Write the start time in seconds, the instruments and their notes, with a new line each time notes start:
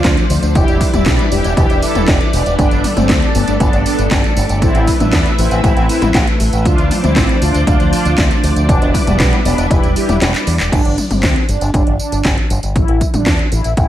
Already playing: string machine F3 A3 D4 C5 D5, analog polysynth D4 F4
0.04 fingered electric bass D2, kick, snare, clap, closed hi-hat, tambourine
0.17 closed hi-hat, tambourine
0.30 fingered electric bass D2, open hi-hat, tambourine
0.43 fingered electric bass D2, closed hi-hat, tambourine
0.55 fingered electric bass E1, string machine G3 E4 B4, analog polysynth E4 G4, kick, closed hi-hat, tambourine
0.68 fingered electric bass E1, closed hi-hat, tambourine
0.81 kick, open hi-hat, tambourine
0.93 fingered electric bass E1, analog polysynth G3 E4, closed hi-hat, high tom, tambourine
1.06 fingered electric bass B1, kick, snare, clap, closed hi-hat, tambourine
1.19 closed hi-hat, high tom, tambourine
1.32 fingered electric bass E1, analog polysynth E4 G4, open hi-hat, tambourine
1.44 fingered electric bass E1, closed hi-hat, tambourine
1.57 fingered electric bass E1, analog polysynth E4 G4, kick, closed hi-hat, tambourine
1.70 fingered electric bass E1, closed hi-hat, tambourine
1.82 analog polysynth E4 A4, open hi-hat, tambourine
1.95 fingered electric bass E1, closed hi-hat, high tom, tambourine
2.08 fingered electric bass E1, kick, snare, clap, closed hi-hat, tambourine
2.21 closed hi-hat, tambourine
2.33 fingered electric bass E1, open hi-hat, tambourine
2.46 fingered electric bass E1, closed hi-hat, tambourine
2.59 fingered electric bass G1, string machine A3 A4, analog polysynth B3 D4, kick, closed hi-hat, tambourine
2.71 fingered electric bass G1, closed hi-hat, tambourine
2.84 open hi-hat, high tom, tambourine
2.97 fingered electric bass G1, analog polysynth A3 C4, closed hi-hat, high tom, tambourine
3.09 fingered electric bass D2, kick, snare, clap, closed hi-hat, tambourine
3.22 closed hi-hat, tambourine
3.35 fingered electric bass G1, analog polysynth B3 D4, open hi-hat, tambourine
3.48 fingered electric bass G1, closed hi-hat, tambourine
3.60 fingered electric bass G1, analog polysynth B3 D4, kick, closed hi-hat, tambourine
3.73 fingered electric bass G1, closed hi-hat, tambourine
3.86 analog polysynth B3 D4, open hi-hat, tambourine
3.99 fingered electric bass G1, closed hi-hat, tambourine
4.11 fingered electric bass G1, kick, snare, clap, closed hi-hat, tambourine
4.24 closed hi-hat, tambourine
4.37 fingered electric bass G1, open hi-hat, tambourine
4.49 fingered electric bass G1, closed hi-hat, tambourine
4.62 fingered electric bass A1, analog polysynth C4 E4, string machine E4 B4 E5, kick, closed hi-hat, tambourine
4.75 fingered electric bass A1, closed hi-hat, tambourine
4.87 kick, open hi-hat, tambourine
5.00 fingered electric bass A1, analog polysynth B3 D4, closed hi-hat, high tom, tambourine
5.13 fingered electric bass E2, kick, snare, clap, closed hi-hat, tambourine
5.26 closed hi-hat, tambourine
5.38 fingered electric bass A1, analog polysynth C4 E4, open hi-hat, tambourine
5.51 fingered electric bass A1, closed hi-hat, tambourine
5.64 fingered electric bass A1, analog polysynth C4 E4, kick, closed hi-hat, tambourine
5.76 fingered electric bass A1, closed hi-hat, tambourine
5.89 analog polysynth C4 E4, open hi-hat, tambourine
6.02 fingered electric bass A1, closed hi-hat, high tom, tambourine
6.15 fingered electric bass A1, kick, snare, clap, closed hi-hat, tambourine
6.27 closed hi-hat, tambourine
6.40 fingered electric bass A1, open hi-hat, tambourine
6.53 fingered electric bass A1, closed hi-hat, tambourine
6.65 fingered electric bass D2, string machine F3 D4 C5 D5, analog polysynth D4 F4, kick, closed hi-hat, tambourine
6.78 fingered electric bass D2, closed hi-hat, tambourine
6.91 open hi-hat, high tom, tambourine
7.03 fingered electric bass D2, analog polysynth C4 E4, closed hi-hat, high tom, tambourine
7.16 fingered electric bass A1, kick, snare, clap, closed hi-hat, tambourine
7.29 closed hi-hat, tambourine
7.42 fingered electric bass D2, analog polysynth D4 F4, open hi-hat, tambourine
7.54 fingered electric bass D2, closed hi-hat, tambourine
7.67 fingered electric bass D2, analog polysynth D4 F4, kick, closed hi-hat, tambourine
7.80 fingered electric bass D2, closed hi-hat, tambourine
7.93 analog polysynth D4 F4, open hi-hat, tambourine
8.05 fingered electric bass D2, closed hi-hat, tambourine
8.18 fingered electric bass D2, kick, snare, clap, closed hi-hat, tambourine
8.31 closed hi-hat, tambourine
8.44 fingered electric bass D2, open hi-hat, tambourine
8.56 fingered electric bass D2, closed hi-hat, tambourine
8.69 fingered electric bass E1, string machine G3 E4 B4, analog polysynth B3 D4, kick, closed hi-hat, tambourine
8.82 fingered electric bass E1, closed hi-hat, tambourine
8.94 kick, open hi-hat, high tom, tambourine
9.07 fingered electric bass E1, analog polysynth G3 B3, closed hi-hat, high tom, tambourine
9.20 fingered electric bass B1, kick, snare, clap, closed hi-hat, tambourine
9.33 closed hi-hat, high tom, tambourine
9.45 fingered electric bass E1, analog polysynth B3 D4, open hi-hat, tambourine
9.58 fingered electric bass E1, closed hi-hat, tambourine
9.71 fingered electric bass E1, analog polysynth G3 E4, kick, closed hi-hat, tambourine
9.83 fingered electric bass E1, closed hi-hat, tambourine
9.96 analog polysynth E4 G4, open hi-hat, tambourine
10.09 fingered electric bass E1, closed hi-hat, high tom, tambourine
10.21 fingered electric bass E1, snare, clap, closed hi-hat, tambourine
10.34 clap, closed hi-hat, tambourine
10.47 fingered electric bass E2, open hi-hat, tambourine
10.59 fingered electric bass E1, clap, tambourine
10.72 fingered electric bass G1, analog polysynth D4, kick, closed hi-hat, crash, tambourine
10.85 fingered electric bass G1, closed hi-hat
10.98 closed hi-hat, high tom, tambourine
11.10 fingered electric bass G1, analog polysynth C4, closed hi-hat, high tom, tambourine
11.23 fingered electric bass D2, kick, snare, clap, closed hi-hat, tambourine
11.36 closed hi-hat
11.48 fingered electric bass G1, analog polysynth D4, closed hi-hat, tambourine
11.61 fingered electric bass G1, closed hi-hat, tambourine
11.74 fingered electric bass G1, analog polysynth D4, kick, closed hi-hat, tambourine
11.87 fingered electric bass G1, closed hi-hat
11.99 analog polysynth D4, tambourine
12.12 fingered electric bass G1, closed hi-hat, tambourine
12.25 fingered electric bass G1, kick, snare, clap, closed hi-hat, tambourine
12.38 closed hi-hat
12.50 fingered electric bass G1, closed hi-hat, tambourine
12.63 fingered electric bass G1, closed hi-hat, tambourine
12.75 fingered electric bass A1, analog polysynth E4, kick, closed hi-hat, tambourine
12.88 fingered electric bass A1, closed hi-hat
13.01 kick, closed hi-hat, tambourine
13.14 fingered electric bass A1, analog polysynth D4, closed hi-hat, high tom, tambourine
13.26 fingered electric bass E2, kick, snare, clap, closed hi-hat, tambourine
13.39 closed hi-hat
13.52 fingered electric bass A1, analog polysynth E4, closed hi-hat, tambourine
13.64 fingered electric bass A1, closed hi-hat, tambourine
13.77 fingered electric bass A1, analog polysynth E4, kick, closed hi-hat, tambourine